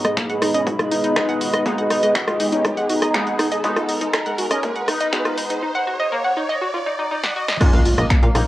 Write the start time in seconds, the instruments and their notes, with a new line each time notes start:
Already playing: synth stab G#3 B3 D#4, analog synth pad G#3 B3 D#4 B4 D#5, ambient pad G#4 C#5 D#5 B5, riser
0.05 analog polysynth G#3, synth arpeggio sound D#5, cross-stick, closed hi-hat
0.17 synth arpeggio sound A#3, finger snap, kick, closed hi-hat
0.29 analog polysynth G#3, synth arpeggio sound F#5, closed hi-hat
0.42 analog polysynth G#3, synth arpeggio sound D#4, cross-stick, open hi-hat
0.54 analog polysynth C#4, synth arpeggio sound D#5, closed hi-hat
0.66 analog polysynth G#3, synth arpeggio sound F#4, kick, closed hi-hat
0.79 analog polysynth G#3, synth arpeggio sound F4, cross-stick, closed hi-hat
0.91 synth arpeggio sound D#4, analog polysynth D#4, open hi-hat
1.04 synth arpeggio sound D#4, closed hi-hat
1.16 synth stab G#3 B3 D#4, synth arpeggio sound D#4, finger snap, kick, cross-stick, closed hi-hat
1.28 synth arpeggio sound F#5, closed hi-hat
1.41 synth arpeggio sound F#4, open hi-hat
1.53 synth arpeggio sound D#5, cross-stick, closed hi-hat
1.66 synth stab G#3 B3 D#4, synth arpeggio sound A#3, analog polysynth D#4, kick, closed hi-hat
1.78 analog polysynth G#3, synth arpeggio sound F#5, closed hi-hat
1.90 synth arpeggio sound D#4, cross-stick, open hi-hat
2.03 analog polysynth G#3, synth arpeggio sound D#5, closed hi-hat
2.15 synth arpeggio sound F#4, finger snap, kick, closed hi-hat
2.28 analog polysynth G#3, synth arpeggio sound F4, cross-stick, closed hi-hat
2.40 analog polysynth G#3, synth arpeggio sound D#4, open hi-hat
2.52 analog polysynth C#4, synth arpeggio sound D#4, closed hi-hat
2.65 analog polysynth G#3, synth arpeggio sound D#4, kick, cross-stick, closed hi-hat
2.77 analog polysynth G#3, synth arpeggio sound F#5, closed hi-hat
2.89 analog polysynth D#4, synth arpeggio sound F#4, open hi-hat
3.02 synth arpeggio sound D#5, cross-stick, closed hi-hat
3.14 synth stab G#3 B3 D#4, synth arpeggio sound A#3, finger snap, kick, closed hi-hat
3.27 synth arpeggio sound F#5, ambient pad A#5, closed hi-hat
3.39 synth arpeggio sound D#4, cross-stick, open hi-hat
3.52 synth arpeggio sound D#5, closed hi-hat
3.64 synth stab G#3 B3 D#4, analog polysynth D#4, synth arpeggio sound F#4, kick, closed hi-hat
3.76 analog polysynth G#3, synth arpeggio sound F4, cross-stick, closed hi-hat
3.89 synth arpeggio sound D#4, open hi-hat
4.01 analog polysynth G#3, synth arpeggio sound D#4, closed hi-hat
4.14 synth arpeggio sound D#4, finger snap, kick, cross-stick, closed hi-hat
4.26 analog polysynth G#3, synth arpeggio sound F#5, closed hi-hat
4.38 analog polysynth G#3, synth arpeggio sound F#4, open hi-hat
4.51 analog polysynth C#4, synth arpeggio sound D#5, cross-stick, closed hi-hat
4.63 analog polysynth G#3, synth arpeggio sound A#3, kick, closed hi-hat
4.76 analog polysynth G#3, synth arpeggio sound F#5, closed hi-hat
4.88 analog polysynth D#4, synth arpeggio sound D#4, cross-stick, open hi-hat
5.00 synth arpeggio sound D#5, closed hi-hat
5.13 synth stab G#3 B3 D#4, synth arpeggio sound F#4, finger snap, kick, closed hi-hat
5.25 synth arpeggio sound F4, cross-stick, closed hi-hat
5.38 synth arpeggio sound D#4, open hi-hat
5.50 synth arpeggio sound D#4, closed hi-hat
5.62 synth arpeggio sound D#4
5.75 synth arpeggio sound F#5
5.87 synth arpeggio sound F#4
6.00 synth arpeggio sound D#5
6.12 synth arpeggio sound A#3
6.25 synth arpeggio sound F#5
6.37 synth arpeggio sound D#4
6.49 synth arpeggio sound D#5
6.62 synth arpeggio sound F#4
6.74 synth arpeggio sound F4
6.86 synth arpeggio sound D#4
6.99 synth arpeggio sound D#4
7.11 synth arpeggio sound D#4
7.24 synth arpeggio sound F#5, snare
7.36 synth arpeggio sound F#4
7.48 synth arpeggio sound D#5, snare
7.61 analog synth pad G#3 C#4 F4 C#5, synth stab G#3 A#3 C#4, synth arpeggio sound D#4, synth bell F4, analog polysynth F4, kick, cross-stick, closed hi-hat, crash, impact
7.73 analog synth bass A#1, analog polysynth A#3, synth arpeggio sound F5, closed hi-hat
7.85 synth arpeggio sound F4, open hi-hat
7.91 ambient pad C#5
7.98 analog synth bass A#1, analog polysynth A#3, synth arpeggio sound D#5, cross-stick, closed hi-hat
8.10 synth arpeggio sound A#3, finger snap, kick, closed hi-hat
8.23 analog synth bass A#2, analog polysynth A#3, synth arpeggio sound F5, closed hi-hat
8.35 analog synth bass A#1, analog polysynth A#3, synth arpeggio sound D#4, cross-stick, open hi-hat